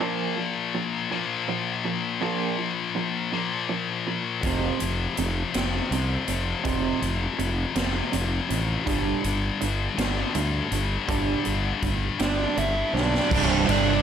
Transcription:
0.00 A#2 F3 A#3
0.38 A#2 F3
0.75 A#2 F3
1.11 A#2 F3 A#3
1.48 A#2 F3
1.85 A#2 F3
2.21 A#2 F3 A#3
2.59 A#2 F3
2.95 A#2 F3
3.33 A#2 F3 A#3
3.69 A#2 F3
4.07 A#2 F3
4.43 F1 F2 C3 F3, kick, closed hi-hat
4.80 F1 F2 C3, closed hi-hat
5.17 F1 F2 C3, closed hi-hat
5.54 F1 F2 C3 F3, snare, closed hi-hat
5.91 C2 F2 C3, closed hi-hat
6.28 F1 F2 C3, closed hi-hat
6.64 F1 F2 C3 F3, kick, closed hi-hat
7.02 F1 F2 C3, closed hi-hat
7.38 F1 F2 C3, closed hi-hat
7.76 F1 F2 C3 F3, snare, closed hi-hat
8.12 F1 F2 C3, closed hi-hat
8.49 A1 F2 C3, closed hi-hat
8.86 G1 G2 D3 G3, kick, closed hi-hat
9.23 G1 G2 D3, closed hi-hat
9.61 G1 G2 D3, closed hi-hat
9.97 G1 G2 D3 G3, snare, closed hi-hat
10.35 D2 G2 D3, closed hi-hat
10.72 G1 G2 D3, closed hi-hat
11.08 G1 G2 D3 G3, kick, closed hi-hat
11.45 G1 G2 D3, closed hi-hat
11.82 G1 G2 D3, kick, closed hi-hat
12.19 G1 G2 D3 G3 D4 D5, snare, closed hi-hat
12.57 G1 G2 D3 E4 E5, closed hi-hat
12.93 B1 G2 D3 D4 D5, snare
13.15 snare
13.31 C1 C2 G2 C3 G3 D4, kick, crash
13.50 C5
13.68 G1 C3 G3 D4 D5, ride

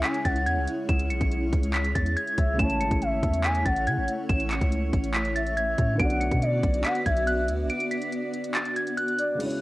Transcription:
Already playing: C#3 G#3 C#4 E4 C#5
0.04 G#5 B6, clap, closed hi-hat
0.14 closed hi-hat
0.25 C#2 F#5 A6, kick, closed hi-hat
0.36 closed hi-hat
0.46 E2 G#6, closed hi-hat
0.57 C#2
0.68 closed hi-hat
0.89 C#2 E7, kick, closed hi-hat
0.99 closed hi-hat
1.10 B1 C#7, closed hi-hat
1.21 B1, kick, closed hi-hat
1.32 closed hi-hat
1.53 C#2, kick, closed hi-hat
1.63 closed hi-hat
1.74 B6, clap, closed hi-hat
1.84 closed hi-hat
1.95 E2 A6, kick, closed hi-hat
2.06 closed hi-hat
2.17 G#6, closed hi-hat
2.27 closed hi-hat
2.38 C#2 E5, kick, closed hi-hat
2.54 C#3 A3
2.59 A1 A3 C#4 E4 C#5 A5 E7, kick, closed hi-hat
2.64 C#5
2.70 closed hi-hat
2.80 G#1 C#7, closed hi-hat
2.91 A1, kick, closed hi-hat
3.02 E5, closed hi-hat
3.12 G#1
3.23 E2, kick, closed hi-hat
3.33 closed hi-hat
3.44 G#5 B6, clap, closed hi-hat
3.55 closed hi-hat
3.65 A1 F#5 A6, kick, closed hi-hat
3.76 closed hi-hat
3.87 C#3 G#6, closed hi-hat
3.97 A1
4.08 closed hi-hat
4.29 A1 E7, kick, closed hi-hat
4.40 closed hi-hat
4.50 C#7, clap, closed hi-hat
4.61 C#2, kick, closed hi-hat
4.72 closed hi-hat
4.93 A1, kick, closed hi-hat
5.04 closed hi-hat
5.14 B6, clap, closed hi-hat
5.25 closed hi-hat
5.36 E5 A6, closed hi-hat
5.47 closed hi-hat
5.57 G#6, closed hi-hat
5.78 A2, kick, closed hi-hat
5.94 D3 B3
6.00 B1 B3 D4 F#4 D5 F#5 D7, kick, closed hi-hat
6.05 D5
6.10 closed hi-hat
6.21 C#7, closed hi-hat
6.31 B2, kick, closed hi-hat
6.42 D5, closed hi-hat
6.63 B1, kick, closed hi-hat
6.74 closed hi-hat
6.85 F#5 B6, clap, closed hi-hat
6.95 closed hi-hat
7.06 B1 E5 G#6, kick, closed hi-hat
7.17 closed hi-hat
7.27 F#6, closed hi-hat
7.48 D2, closed hi-hat
7.64 B1
7.70 D7, closed hi-hat
7.80 closed hi-hat
7.91 B6, closed hi-hat
8.02 closed hi-hat
8.12 closed hi-hat
8.34 closed hi-hat
8.44 closed hi-hat
8.55 A6, clap, closed hi-hat
8.65 closed hi-hat
8.76 G#6, closed hi-hat
8.87 closed hi-hat
8.97 F#6, closed hi-hat
9.08 closed hi-hat
9.19 D5, closed hi-hat
9.35 C#3 G#3
9.40 E4, closed hi-hat, crash
9.45 C#5
9.50 closed hi-hat

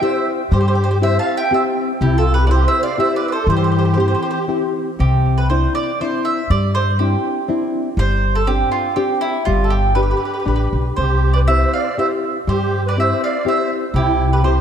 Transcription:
0.01 C4 E4 G4 C5 E5
0.51 G2 G3 G4 C5
0.60 C5
0.68 C5
0.75 C5
0.84 C5
0.91 C5
1.01 C4 E4 G4 C5 E5
1.19 F5 A5
1.36 E5 G5
1.51 C4 E4 G4 C5 E5
2.01 C2 C3 E4 G4
2.18 F4 A4
2.34 G4 B4
2.47 C4 E4 G4 B4 D5
2.51 C5
2.67 C5 E5
2.83 D5 F5
2.97 C4 E4 G4 C5 E5
3.16 B4 D5
3.28 B4 D5
3.32 A4 C5
3.47 G2 E3 G4 C5
3.57 C5
3.64 C5
3.72 C5
3.79 C5
3.85 C5
3.94 C4 E4 G4 C5
4.00 C5
4.08 C5
4.14 C5
4.22 C5
4.31 C5
4.48 C4 E4 G4
4.99 C2 C3 G4
5.38 B4
5.50 C4 D4 E4 C5
5.75 D5
6.00 C4 D4 E4 C5
6.25 E5
6.50 G2 G3 D5
6.75 C5
6.99 C4 D4 E4 G4
7.48 C4 D4 E4
7.97 G1 G3 C5
8.35 A4
8.47 C4 D4 G4
8.72 F4
8.96 C4 D4 G4
9.21 E4
9.45 G1 G3 F4
9.64 A4
9.70 G4
9.95 D4 G4 B4
10.03 B4
10.11 B4
10.17 B4
10.25 B4
10.34 B4
10.40 B4
10.46 A1 D4 G4 B4
10.56 B4
10.73 B1
10.96 C2 C3 G4 C5
11.34 B4 D5
11.48 C4 E4 G4 C5 E5
11.73 D5 F5
11.97 C4 E4 G4 C5 E5
12.47 G2 G3 G4 C5
12.87 B4 D5
12.97 C4 E4 G4 C5 E5
13.23 D5 F5
13.45 C4 E4 G4 C5 E5
13.94 C2 C3 E4 G4
14.32 G4 B4
14.42 C4 E4 G4 C5

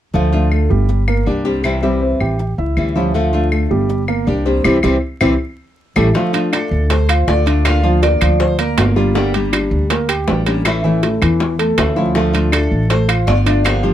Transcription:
0.13 D2 D3 F3 A3 D4 F4
0.32 A3 D4 F4
0.51 A3 A4, claves
0.70 G1 G3 G4
0.89 muted nylon-string guitar stroke
1.08 A#3 A#4, claves
1.26 C2 G3 A#3 D4 G4 D5
1.45 G3 A#3 C4 D4 G4 C5
1.64 C3 E3 G3 C4 E4, claves
1.83 E3 G3 C4 E4 G4
2.02 C4 C5
2.20 A1 G4 G5, claves
2.39 muted nylon-string guitar stroke
2.58 C#2 E4 E5
2.77 D2 E3 G3 C#4 E4, claves
2.96 F3 G3 C#4 E4 F4
3.14 D3 F3 A3 D4 F4
3.33 A3 D4 F4
3.52 A3 A4, claves
3.71 G1 G3 G4
3.89 muted nylon-string guitar stroke
4.08 A#3 A#4, claves
4.27 C2 G3 A#3 D4 G4 D5
4.46 G3 A#3 C4 D4 G4 C5
4.64 C2 E3 G3 C4 E4 G4, claves
4.83 C2 E3 G3 C4 E4 G4, claves
5.21 C2 E3 G3 C4 E4 G4, claves
5.96 A1 G3 A3 C#4 E4 G4 A4, claves
6.14 D3 F3 A3 D4 F4, high bongo
6.33 A3 D4 F4, high timbale
6.53 D4 A4 D5, high bongo, high timbale, claves
6.71 D2
6.90 A3 A4 C5, muted nylon-string guitar stroke, high bongo, high timbale
7.09 F4 F5, high timbale, claves
7.27 D2 D3 A3 D4 F4 D5, high bongo, low bongo
7.46 A3 D4 F4 D5, high timbale
7.65 D3 A#3 D4 F4 F5, high bongo, high timbale, claves
7.83 F3 A#3 D4 F4, high bongo
8.03 A#3 A#4 D5, high bongo, high timbale
8.21 D2 F3 F4, high bongo, high timbale, claves
8.40 C5, muted nylon-string guitar stroke, high bongo
8.59 A#3 A#4, high timbale
8.78 G1 D3 A#3 D4 F4, high bongo, low bongo, high timbale, low timbale, claves
8.96 G3 A#3 D4 F4 G4, high bongo
9.15 D3 G3 A#3 D4 G4, high bongo
9.34 G3 A#3 D4 G4, high timbale
9.52 D4 D5, high bongo, high timbale, claves
9.71 D2
9.90 A#3 A#4, muted nylon-string guitar stroke, high bongo, high timbale
10.09 G4 G5, high timbale, claves
10.27 A1 G3 A#3 D4 G4, high bongo, low bongo, low timbale
10.46 G3 A#3 C#4 D4 G4 C#5, high timbale
10.65 E3 A3 C#4 E4, high bongo, high timbale, claves
10.84 E3 A3 C#4 E4, high bongo
11.03 A3 A4, high bongo, high timbale
11.22 E2 E3 E4, high bongo, high timbale, claves
11.40 muted nylon-string guitar stroke, high bongo
11.59 A3 A4, high timbale
11.78 D2 E3 A3 C#4 E4, high bongo, low bongo, high timbale, low timbale, claves
11.96 F3 A3 C#4 E4 F4, high bongo
12.15 D3 F3 A3 D4 F4, high bongo
12.33 A3 D4 F4, high timbale
12.52 D4 A4 D5, high bongo, high timbale, claves
12.71 A1
12.90 A3 A4 C5, muted nylon-string guitar stroke, high bongo, high timbale
13.08 F4 F5, high timbale, claves
13.27 G1 D3 A3 D4 F4 D5, high bongo, low bongo
13.46 A3 D4 F4 D5, high timbale
13.65 D3 F3 A#3 D4 G4 F5, high bongo, high timbale, claves
13.83 F3 A#3 D4 F4 G4, high bongo

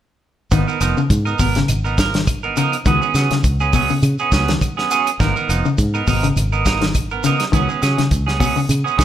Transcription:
0.51 G#1 D#3 F3 B3 D#4, muted clean electric guitar stroke, kick, closed hi-hat, shekere
0.68 B3 D#4 A#4, shekere
0.81 F1 F3 B3 D#4 A#4, closed hi-hat, claves, shekere
0.97 C#3, shekere
1.10 G#2, kick, closed hi-hat, shekere
1.25 B3 D#4 A#4, claves, shekere
1.39 G#1 B2 B3 A#4, muted clean electric guitar stroke, kick, open hi-hat, shekere
1.55 C#3, snare, closed hi-hat, shekere
1.68 G#1, closed hi-hat, claves, shekere
1.84 B3 D#4 A#4, shekere
1.98 F3 A#4, muted clean electric guitar stroke, kick, snare, closed hi-hat, shekere
2.14 D#3, snare, closed hi-hat, shekere
2.27 kick, closed hi-hat, claves, shekere
2.43 B3 D#4 A#4, shekere
2.57 C#3 F3 B3 D#4 A#4, closed hi-hat, shekere
2.72 closed hi-hat, claves, shekere
2.85 C#2 D#3 F#3 B3 C#4 G#4, kick, closed hi-hat, shekere
3.02 B3 C#4 G#4, shekere
3.14 C#3 F#3 B3 C#4 G#4, snare, closed hi-hat, claves, shekere
3.31 C#3, muted fingered electric bass stroke, snare, closed hi-hat, shekere
3.43 C#2, kick, closed hi-hat, shekere
3.60 B3 C#4 G#4, claves, shekere
3.73 B2 F#3 B3 C#4 G#4, kick, open hi-hat, shekere
3.89 C#3, shekere
4.02 C#3, closed hi-hat, claves, shekere
4.19 B3 C#4 G#4, shekere
4.32 C#2 F#3 B3 C#4 G#4, kick, snare, closed hi-hat, shekere
4.48 D#3, snare, closed hi-hat, shekere
4.61 kick, closed hi-hat, claves, shekere
4.77 B3 C#4 G#4, snare, shekere
4.91 F#3 B3 C#4 G#4, closed hi-hat, shekere
5.07 closed hi-hat, claves, shekere
5.20 G#1 D#3 F3 B3 D#4 A#4, kick, snare, closed hi-hat, shekere
5.36 B3 D#4 A#4, shekere
5.49 F1 F3 B3 D#4, closed hi-hat, claves, shekere
5.65 C#3, shekere
5.78 G#2, kick, closed hi-hat, shekere
5.94 B3 D#4 A#4, claves, shekere
6.07 G#1 B2 F3 B3 D#4 A#4, kick, open hi-hat, shekere
6.23 C#3, closed hi-hat, shekere
6.36 G#1, closed hi-hat, claves, shekere
6.52 B3 D#4 A#4, shekere
6.66 F3 B3 D#4 A#4, kick, snare, closed hi-hat, shekere
6.81 D#3, snare, closed hi-hat, shekere
6.94 kick, closed hi-hat, claves, shekere
7.11 B3 A#4, muted clean electric guitar stroke, shekere
7.24 C#3 F3 B3 D#4 A#4, closed hi-hat, shekere
7.40 snare, closed hi-hat, claves, shekere
7.52 C#2 D#3 F#3 B3 C#4 G#4, kick, closed hi-hat, shekere
7.69 B3 C#4 G#4, shekere
7.82 C#3 F#3 C#4 G#4, muted clean electric guitar stroke, snare, closed hi-hat, claves, shekere
7.98 C#3, muted fingered electric bass stroke, snare, closed hi-hat, shekere
8.11 C#2, kick, closed hi-hat, shekere
8.27 B3 C#4 G#4, snare, claves, shekere
8.39 B2 F#3 B3 C#4 G#4, kick, open hi-hat, shekere
8.56 C#3, shekere
8.69 C#3, closed hi-hat, claves, shekere
8.84 B3 C#4 G#4, shekere
8.97 C#2 F#3 B3 C#4 G#4, kick, snare, closed hi-hat, shekere

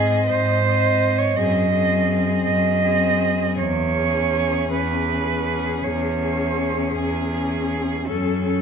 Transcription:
Already playing: G#2 C4 G#4 D#5
0.27 G#2 C5
0.65 C4 D#5
1.18 C#5
1.36 F#2 C4 G#4 D#5
1.72 C4 G#4
2.45 F#2 D#5
2.84 C4 G#4
3.58 E2 C#5
3.96 C#4 G#4
4.72 E2 B4
5.08 C#4 G#4
5.84 E2 C#5
6.21 C#4 G#4
6.95 E2 G#4
7.32 C#4 G#4
8.07 F#2 C#4 A4
8.44 C#4 A4

